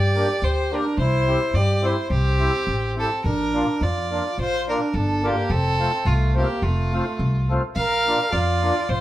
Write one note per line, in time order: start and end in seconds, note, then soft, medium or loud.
0.00 0.22 G2 medium
0.00 0.44 G4 medium
0.00 0.45 D5 loud
0.16 0.28 A#3 medium
0.16 0.28 D4 medium
0.16 0.29 G4 medium
0.42 0.78 D2 medium
0.42 0.74 G4 medium
0.42 0.77 C5 medium
0.72 0.84 A#3 medium
0.72 0.84 D4 soft
0.72 0.98 D4 medium
0.72 0.85 G4 medium
0.72 0.97 A#4 medium
0.97 1.34 C2 medium
0.97 1.58 E4 medium
0.97 1.56 C5 loud
1.27 1.39 C4 medium
1.27 1.40 E4 medium
1.27 1.40 G4 medium
1.53 1.90 G2 medium
1.53 1.87 G4 medium
1.53 1.87 D5 medium
1.82 1.95 C4 soft
1.82 1.95 E4 soft
1.82 2.10 E4 medium
1.82 1.96 G4 medium
1.82 2.10 C5 medium
2.10 2.47 C2 medium
2.10 2.94 C4 medium
2.10 2.94 G4 loud
2.39 2.52 C4 medium
2.39 2.52 E4 soft
2.39 2.53 G4 medium
2.67 3.04 A1 medium
2.96 3.09 C4 medium
2.96 3.23 C4 medium
2.96 3.09 E4 soft
2.96 3.10 G4 medium
2.96 3.23 A4 medium
3.24 3.62 A#1 medium
3.24 3.85 D4 medium
3.24 3.84 A#4 medium
3.53 3.66 A#3 medium
3.53 3.67 D4 medium
3.53 3.67 F4 medium
3.81 4.18 F2 medium
3.81 4.39 F4 medium
3.81 4.39 D5 medium
4.11 4.23 A#3 soft
4.11 4.24 D4 soft
4.11 4.24 F4 soft
4.38 4.74 A#1 medium
4.38 4.68 F4 medium
4.38 4.67 C5 loud
4.68 4.80 A#3 medium
4.68 4.80 D4 medium
4.68 4.95 D4 medium
4.68 4.80 F4 medium
4.68 4.96 A#4 medium
4.94 5.30 G1 medium
4.94 5.26 D4 medium
4.94 5.27 A4 medium
5.23 5.35 A#3 medium
5.23 5.53 A#3 medium
5.23 5.35 D4 soft
5.23 5.36 F4 medium
5.23 5.52 G4 medium
5.50 5.86 F1 medium
5.50 6.09 C4 medium
5.50 6.08 A4 loud
5.79 5.91 A3 medium
5.79 5.91 C4 soft
5.79 5.91 F4 medium
6.05 6.42 C2 medium
6.05 6.37 A3 medium
6.05 6.36 F4 medium
6.34 6.47 A3 medium
6.34 6.66 A#3 medium
6.34 6.47 C4 soft
6.34 6.48 F4 medium
6.34 6.64 G4 medium
6.62 6.99 F1 medium
6.62 7.51 A3 medium
6.62 7.50 F4 medium
6.92 7.04 A3 medium
6.92 7.05 C4 soft
6.92 7.05 F4 medium
7.19 7.56 C2 medium
7.49 7.61 A3 medium
7.49 7.62 C4 medium
7.49 7.62 F4 medium
7.75 8.13 A#1 medium
7.75 8.33 A#4 medium
7.75 8.34 F5 loud
8.06 8.18 A#3 medium
8.06 8.19 D4 medium
8.06 8.19 F4 medium
8.32 8.69 F2 medium
8.32 8.88 F4 medium
8.32 8.90 D5 loud
8.62 8.74 A#3 medium
8.62 8.75 D4 soft
8.62 8.75 F4 medium
8.88 9.01 A#1 medium
8.88 9.01 F4 medium
8.88 9.01 C5 medium